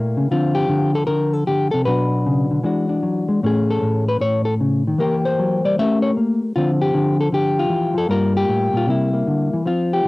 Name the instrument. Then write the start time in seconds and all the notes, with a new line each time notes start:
hollow-body jazz guitar
Already playing: A#2 A3 A#3 E4 G4
0.17 C#3
0.31 D3 F3 C4 F4
0.55 G4
0.69 D3
0.95 A4
1.07 D3 A#4
1.33 A4
1.47 D3 G4
1.71 C3 A4
1.85 B2 F#3 D4 F#4 B4
2.26 C#3
2.51 D3
2.63 E3 G#3 D4 F#4
2.89 D4
3.02 F#3
3.28 G#3
3.43 A2 A3 C#4 G#4
3.70 A4
3.82 A2
4.08 B4
4.21 A2 C#5
4.45 A4
4.60 C#3
4.87 D#3
4.98 E3 A#3 G4 A#4
5.25 C5
5.39 F#3
5.65 G3 D5
5.79 A3 C#4 G4 A#4 E5
6.02 C#5
6.17 A#3
6.56 D3 F3 C4 F4
6.82 G4
6.94 D3
7.21 A4
7.32 D3 G4
7.59 F4
7.70 E3
7.94 F3 A4
8.09 G2 G3 A#3 F4 A#4
8.37 G4
8.49 A2
8.73 A#2 F4
8.87 C3 G3 A#3 E4
9.14 A#3
9.27 D3
9.53 E3
9.66 F3 C4 F4
9.93 G4
10.05 F3